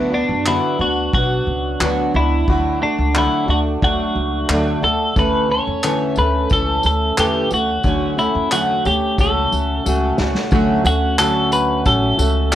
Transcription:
Already playing: upright bass D2, steel-string acoustic guitar D3 F#3 B3 D4 F#4, clean electric guitar E4
0.12 steel-string acoustic guitar B3 D4 F#4, clean electric guitar D4
0.29 upright bass F#2
0.46 steel-string acoustic guitar D3 F#3 B3 D4 F#4, clean electric guitar E4, clap
0.79 upright bass D2, steel-string acoustic guitar B3 D4 F#4, clean electric guitar F#4
1.13 upright bass B1, steel-string acoustic guitar F#3 B3 D4 F#4, clean electric guitar F#4, kick
1.47 upright bass C#2
1.80 upright bass D2, steel-string acoustic guitar D3 F#3 B3 D4 F#4, clap
2.14 upright bass C#2, steel-string acoustic guitar B3 D4 F#4, clean electric guitar E4
2.48 upright bass D2, steel-string acoustic guitar D3 F#3 A3 D4 F#4, kick
2.82 steel-string acoustic guitar A3 D4 F#4, clean electric guitar D4
2.98 upright bass C#2
3.15 steel-string acoustic guitar D3 F#3 A3 D4 F#4, clean electric guitar E4, clap
3.48 upright bass D2, steel-string acoustic guitar A3 D4 F#4, clean electric guitar F#4
3.82 upright bass D2, steel-string acoustic guitar F#3 A3 D4 F#4, clean electric guitar F#4, kick
4.15 upright bass C#2
4.49 upright bass D2, steel-string acoustic guitar D3 F#3 A3 D4 F#4, clap
4.83 upright bass D2, steel-string acoustic guitar A3 D4 F#4, clean electric guitar A4
5.16 upright bass D2, steel-string acoustic guitar D3 E3 A3 C#4 A4, clean electric guitar B4, kick, tambourine
5.49 steel-string acoustic guitar A3 C#4 A4, clean electric guitar C#5
5.67 upright bass E2
5.83 steel-string acoustic guitar D3 E3 A3 C#4 A4, clap, tambourine
6.16 upright bass D2, steel-string acoustic guitar A3 C#4 A4, clean electric guitar B4, tambourine
6.49 upright bass C#2, steel-string acoustic guitar E3 A3 C#4 A4, clean electric guitar A4, kick, tambourine
6.83 upright bass D2, clean electric guitar A4, tambourine
7.17 upright bass E2, steel-string acoustic guitar D3 E3 A3 C#4 A4, clean electric guitar G4, clap, tambourine
7.50 upright bass D2, steel-string acoustic guitar A3 C#4 F#4, clean electric guitar F#4, tambourine
7.83 upright bass D2, steel-string acoustic guitar D3 F#3 A3 C#4 F#4, kick, tambourine
8.17 steel-string acoustic guitar A3 C#4 F#4, clean electric guitar E4, tambourine
8.35 upright bass E2
8.51 steel-string acoustic guitar D3 F#3 A3 C#4 F#4, clean electric guitar F#4, clap, tambourine
8.85 upright bass D2, steel-string acoustic guitar A3 C#4, clean electric guitar G4, tambourine
9.17 upright bass C#2, steel-string acoustic guitar F#3 A3 C#4 F#4, clean electric guitar A4, kick, tambourine
9.52 upright bass C#2, tambourine
9.86 upright bass C#2, steel-string acoustic guitar F#3 A3 C#4 F#4, tambourine
10.18 upright bass C#2, steel-string acoustic guitar A3 C#4 F#4, snare, tambourine
10.35 snare
10.51 upright bass D2, steel-string acoustic guitar D3 F#3 A3 C#4 F#4, kick, tambourine
10.85 upright bass D2, steel-string acoustic guitar A3 C#4 F#4, clean electric guitar F#4, tambourine
11.18 steel-string acoustic guitar D3 F#3 A3 C#4 F#4, clean electric guitar A4, clap, tambourine
11.52 clean electric guitar B4, tambourine
11.85 upright bass A1, steel-string acoustic guitar F#3 A3 C#4 F#4, clean electric guitar A4, kick, tambourine
12.18 upright bass C#2, steel-string acoustic guitar A3 C#4 F#4, tambourine

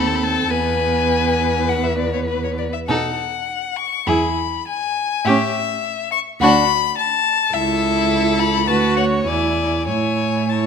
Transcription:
Already playing: cello D#2, viola C4, violin A4
0.07 violin A5
0.16 violin B5
0.23 violin A5
0.50 cello E2, viola B3, violin B4 G#5
1.69 violin F#5
1.84 violin E5
1.97 violin D5
2.13 violin C#5
2.28 violin B4
2.44 violin C#5
2.58 violin D5
2.73 violin E5
2.88 cello B2, viola D#4, violin A4 F#5
3.76 violin C#6
4.07 cello E2, viola E4, violin G#4 B5
4.67 violin G#5
5.25 cello A2, viola C#4, violin G4 E5
6.12 violin C#6
6.40 cello D2, viola D4, violin F#4 B5
6.98 violin A5
7.53 cello C#2, viola E4, violin A4 E5
8.39 violin B5
8.67 cello D2, viola F#4, violin B4 A5
8.97 violin C#5 F#5
9.26 cello E2, viola E4, violin D5 G#5
9.88 cello A2, viola E4, violin C#5 G#5
10.49 viola E4, violin C#5 A5

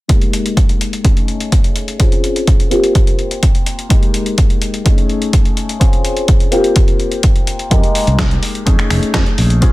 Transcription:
0.08 grand piano G#3 A#3 D#4 G4, kick, closed hi-hat
0.22 closed hi-hat
0.33 closed hi-hat
0.46 closed hi-hat
0.57 kick, closed hi-hat
0.69 closed hi-hat
0.81 closed hi-hat
0.93 closed hi-hat
1.03 grand piano A3 C#4 D#4 G#4, kick, closed hi-hat
1.17 closed hi-hat
1.28 closed hi-hat
1.40 closed hi-hat
1.52 kick, closed hi-hat
1.64 closed hi-hat
1.76 closed hi-hat
1.88 closed hi-hat
1.99 grand piano C4 C#4 F4 G#4, kick, closed hi-hat
2.12 closed hi-hat
2.24 closed hi-hat
2.36 closed hi-hat
2.47 kick, closed hi-hat
2.60 closed hi-hat
2.70 grand piano A#3 C4 F4 G4, closed hi-hat
2.84 closed hi-hat
2.95 kick, closed hi-hat
3.07 closed hi-hat
3.19 closed hi-hat
3.31 closed hi-hat
3.43 kick, closed hi-hat
3.55 closed hi-hat
3.66 closed hi-hat
3.79 closed hi-hat
3.89 grand piano G#3 A#3 D#4 G4, kick, closed hi-hat
4.03 closed hi-hat
4.14 closed hi-hat
4.26 closed hi-hat
4.38 kick, closed hi-hat
4.50 closed hi-hat
4.62 closed hi-hat
4.74 closed hi-hat
4.84 grand piano A3 C#4 D#4 G#4, kick, closed hi-hat
4.98 closed hi-hat
5.09 closed hi-hat
5.22 closed hi-hat
5.33 kick, closed hi-hat
5.45 closed hi-hat
5.57 closed hi-hat
5.69 closed hi-hat
5.80 grand piano C4 C#4 F4 G#4, kick, closed hi-hat
5.93 closed hi-hat
6.05 closed hi-hat
6.17 closed hi-hat
6.28 kick, closed hi-hat
6.40 closed hi-hat
6.51 grand piano A#3 C4 F4 G4, closed hi-hat
6.64 closed hi-hat
6.76 kick, closed hi-hat
6.88 closed hi-hat
7.00 closed hi-hat
7.12 closed hi-hat
7.23 kick, closed hi-hat
7.36 closed hi-hat
7.47 closed hi-hat
7.59 closed hi-hat
7.70 fingered electric bass F2, grand piano G#3 A#3 D#4 G4, kick, closed hi-hat
7.83 closed hi-hat
7.95 open hi-hat
8.07 fingered electric bass C2, closed hi-hat
8.19 kick, snare, closed hi-hat
8.31 closed hi-hat
8.43 open hi-hat
8.55 closed hi-hat
8.66 fingered electric bass F2, grand piano A3 C#4 D#4 G#4, kick, closed hi-hat
8.79 finger snap, closed hi-hat
8.90 fingered electric bass F1, finger snap, open hi-hat
9.03 closed hi-hat
9.14 fingered electric bass F2, kick, snare, closed hi-hat
9.26 closed hi-hat
9.38 fingered electric bass A#1, open hi-hat
9.50 closed hi-hat
9.61 grand piano C4 C#4 F4 G#4, kick, closed hi-hat

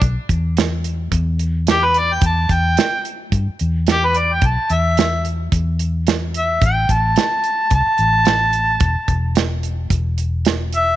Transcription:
0.02 fingered electric bass B1, kick, closed hi-hat
0.29 fingered electric bass E2, kick, closed hi-hat
0.57 snare, closed hi-hat
0.84 closed hi-hat
1.12 fingered electric bass E2, kick, closed hi-hat
1.39 closed hi-hat
1.67 harmonica G4, snare, closed hi-hat
1.85 harmonica B4
1.94 closed hi-hat
1.98 harmonica D5
2.13 harmonica G5
2.21 fingered electric bass E2, kick, closed hi-hat
2.26 harmonica A5
2.49 fingered electric bass E2, harmonica G5, kick, closed hi-hat
2.77 snare, closed hi-hat
3.05 closed hi-hat
3.32 fingered electric bass G2, kick, closed hi-hat
3.48 muted fingered electric bass stroke
3.59 fingered electric bass E2, closed hi-hat
3.87 snare, closed hi-hat
3.91 harmonica G4
4.05 harmonica B4
4.15 harmonica D5, closed hi-hat
4.33 harmonica G5
4.42 fingered electric bass B1, kick, closed hi-hat
4.46 harmonica A5
4.70 fingered electric bass E2, harmonica E5, closed hi-hat
4.97 snare, closed hi-hat
5.25 closed hi-hat
5.52 fingered electric bass E2, kick, closed hi-hat
5.79 closed hi-hat
6.07 snare, closed hi-hat
6.34 harmonica E5, closed hi-hat
6.61 fingered electric bass A1, kick, closed hi-hat
6.66 harmonica G5
6.89 fingered electric bass A1, harmonica A5, kick, closed hi-hat
7.16 snare, closed hi-hat
7.44 closed hi-hat
7.70 fingered electric bass C2, kick, closed hi-hat
7.74 harmonica A5
7.86 muted fingered electric bass stroke
7.98 fingered electric bass A1, closed hi-hat
8.25 snare, closed hi-hat
8.53 closed hi-hat
8.80 fingered electric bass E1, kick, closed hi-hat
9.08 fingered electric bass E1, kick, closed hi-hat
9.35 snare, closed hi-hat
9.63 closed hi-hat
9.90 fingered electric bass E1, kick, closed hi-hat
10.18 closed hi-hat
10.45 snare, closed hi-hat
10.73 harmonica E5, closed hi-hat

